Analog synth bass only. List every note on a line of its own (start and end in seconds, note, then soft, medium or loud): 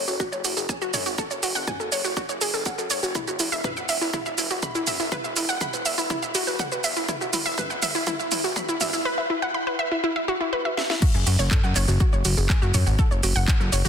0.08 0.18 F#1 medium
0.32 0.42 F#1 medium
0.45 0.55 F#1 medium
0.57 0.67 F#1 medium
0.82 0.92 F#1 medium
0.94 1.04 F#2 loud
1.06 1.16 G#1 medium
1.31 1.41 F#1 medium
1.43 1.53 F#1 loud
1.55 1.65 F#1 medium
1.80 1.90 F#1 medium
1.92 2.02 F#1 loud
2.05 2.15 F#1 medium
2.29 2.39 F#1 medium
2.41 2.51 F#1 medium
2.54 2.64 F#1 medium
2.78 2.88 F#2 medium
2.90 3.01 F#1 medium
3.03 3.13 F#1 medium
3.28 3.38 E1 medium
3.40 3.50 E1 loud
3.52 3.62 E1 medium
3.77 3.87 E1 medium
3.89 3.99 E1 loud
4.01 4.11 E1 medium
4.26 4.36 E1 medium
4.38 4.48 E1 medium
4.51 4.60 E1 medium
4.75 4.85 E1 medium
4.87 4.98 E2 medium
5.00 5.10 F#1 loud
5.24 5.34 E1 medium
5.37 5.47 E1 loud
5.49 5.59 E1 medium
5.74 5.83 E1 medium
5.86 5.96 E1 loud
5.98 6.08 E1 medium
6.23 6.33 E1 medium
6.35 6.45 E1 loud
6.47 6.57 E1 medium
6.72 6.82 E1 medium
6.84 6.94 E2 medium
6.96 7.06 F#1 medium
7.21 7.31 E1 medium
7.46 7.56 E1 medium
7.70 7.80 E1 medium
7.82 7.93 E1 loud
7.95 8.05 E1 medium
8.19 8.29 E1 medium
8.32 8.42 E1 loud
8.44 8.54 E1 medium
8.69 8.78 E1 medium
8.81 8.91 E2 medium
8.93 9.03 F#1 medium
11.14 11.24 F#1 medium
11.27 11.37 F#1 loud
11.39 11.49 F#1 medium
11.64 11.74 F#1 medium
11.76 11.86 F#1 loud
11.88 11.98 F#1 medium
12.13 12.23 F#1 medium
12.25 12.35 F#1 loud
12.38 12.47 F#1 medium
12.62 12.72 F#1 medium
12.74 12.84 F#2 loud
12.87 12.97 G#1 medium
13.11 13.21 F#1 medium
13.23 13.34 F#1 loud
13.36 13.46 F#1 medium
13.60 13.70 F#1 medium
13.72 13.83 F#1 loud
13.85 13.89 F#1 medium